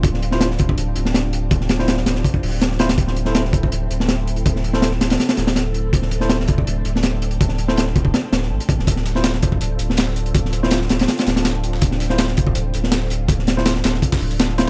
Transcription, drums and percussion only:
0.03 kick, closed hi-hat
0.14 snare
0.23 closed hi-hat
0.31 snare
0.41 snare, closed hi-hat
0.51 snare
0.59 kick, closed hi-hat
0.69 kick
0.78 closed hi-hat
0.96 closed hi-hat
1.05 snare
1.14 snare, closed hi-hat
1.33 closed hi-hat
1.51 kick, closed hi-hat
1.61 snare
1.69 snare, closed hi-hat
1.79 snare
1.88 snare, closed hi-hat
1.97 snare
2.06 snare, closed hi-hat
2.15 snare
2.24 kick, closed hi-hat
2.34 kick
2.43 open hi-hat
2.61 snare, closed hi-hat
2.71 snare
2.79 snare, closed hi-hat
2.89 snare, closed hi-hat
2.98 kick, closed hi-hat
3.07 snare
3.16 closed hi-hat
3.25 snare
3.35 snare, closed hi-hat
3.45 snare
3.53 kick, closed hi-hat
3.63 kick
3.72 closed hi-hat
3.91 closed hi-hat
4.00 snare
4.09 snare, closed hi-hat
4.27 closed hi-hat
4.36 closed hi-hat
4.46 kick, closed hi-hat
4.56 snare
4.64 closed hi-hat
4.73 snare
4.82 snare, closed hi-hat
4.92 snare
5.01 snare, closed hi-hat
5.10 snare, closed hi-hat
5.20 snare, closed hi-hat
5.29 snare, closed hi-hat
5.37 snare, closed hi-hat
5.47 snare, closed hi-hat
5.56 snare, closed hi-hat
5.74 closed hi-hat
5.93 kick, closed hi-hat
6.02 snare
6.11 closed hi-hat
6.20 snare
6.29 snare, closed hi-hat
6.40 snare
6.48 kick, closed hi-hat
6.58 kick
6.67 closed hi-hat
6.85 closed hi-hat
6.96 snare
7.03 snare, closed hi-hat
7.22 closed hi-hat
7.31 closed hi-hat
7.41 kick, closed hi-hat
7.49 snare
7.58 closed hi-hat
7.68 snare
7.77 snare, closed hi-hat
7.87 snare
7.96 kick, closed hi-hat
8.05 kick
8.14 snare, closed hi-hat
8.33 snare, closed hi-hat
8.42 snare
8.60 closed hi-hat
8.69 kick, closed hi-hat
8.79 snare
8.87 kick, closed hi-hat
8.96 snare
9.06 snare, closed hi-hat
9.15 snare
9.24 snare, closed hi-hat
9.34 snare, closed hi-hat
9.42 kick, closed hi-hat
9.52 kick
9.61 closed hi-hat
9.79 closed hi-hat
9.90 snare
9.97 snare, closed hi-hat
10.07 snare
10.16 closed hi-hat
10.26 closed hi-hat
10.35 kick, closed hi-hat
10.45 snare
10.53 closed hi-hat
10.63 snare
10.71 snare, closed hi-hat
10.81 snare
10.89 snare, closed hi-hat
10.99 snare, closed hi-hat
11.08 snare, closed hi-hat, open hi-hat
11.18 snare, closed hi-hat
11.27 snare, closed hi-hat
11.36 snare, closed hi-hat
11.45 snare, closed hi-hat
11.64 closed hi-hat
11.73 snare
11.81 kick, closed hi-hat
11.91 snare
12.00 snare, closed hi-hat
12.10 snare
12.18 snare, closed hi-hat
12.28 snare, closed hi-hat
12.37 kick, closed hi-hat
12.47 kick
12.55 closed hi-hat
12.74 closed hi-hat
12.84 snare
12.92 snare, closed hi-hat
13.02 snare
13.10 closed hi-hat
13.28 kick, closed hi-hat
13.39 snare
13.47 snare, closed hi-hat
13.58 snare
13.66 snare, closed hi-hat
13.76 snare
13.84 snare, closed hi-hat
13.94 snare
14.02 kick, closed hi-hat
14.12 kick, snare, closed hi-hat
14.20 open hi-hat
14.31 closed hi-hat
14.40 snare, closed hi-hat
14.49 snare
14.58 snare, closed hi-hat

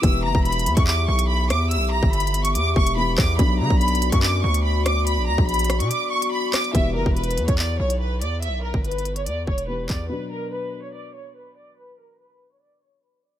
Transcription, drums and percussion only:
0.03 kick, closed hi-hat
0.35 kick
0.45 closed hi-hat
0.52 closed hi-hat
0.59 closed hi-hat
0.66 closed hi-hat
0.77 kick, closed hi-hat
0.87 clap
1.19 closed hi-hat
1.50 cross-stick, closed hi-hat
1.71 closed hi-hat
2.03 kick
2.13 closed hi-hat
2.20 closed hi-hat
2.27 closed hi-hat
2.34 closed hi-hat
2.45 closed hi-hat
2.55 closed hi-hat
2.76 kick
2.87 closed hi-hat
3.18 kick, cross-stick, clap, open hi-hat
3.39 kick, closed hi-hat
3.70 kick
3.81 closed hi-hat
3.88 closed hi-hat
3.95 closed hi-hat
4.02 closed hi-hat
4.12 kick, closed hi-hat
4.23 clap
4.54 closed hi-hat
4.86 cross-stick, closed hi-hat
5.07 closed hi-hat
5.38 kick
5.49 closed hi-hat
5.54 closed hi-hat
5.59 closed hi-hat
5.64 closed hi-hat
5.70 cross-stick, closed hi-hat
5.80 closed hi-hat
5.91 closed hi-hat
6.22 closed hi-hat
6.54 cross-stick, clap, closed hi-hat, open hi-hat
6.64 closed hi-hat
6.75 kick, closed hi-hat
7.06 kick
7.17 closed hi-hat
7.24 closed hi-hat
7.31 closed hi-hat
7.38 closed hi-hat
7.48 kick, closed hi-hat
7.59 clap
7.90 closed hi-hat
8.22 closed hi-hat
8.42 closed hi-hat
8.74 kick
8.84 closed hi-hat
8.91 closed hi-hat
8.98 closed hi-hat
9.05 closed hi-hat
9.16 closed hi-hat
9.26 closed hi-hat
9.47 kick
9.58 closed hi-hat
9.89 kick, clap, closed hi-hat

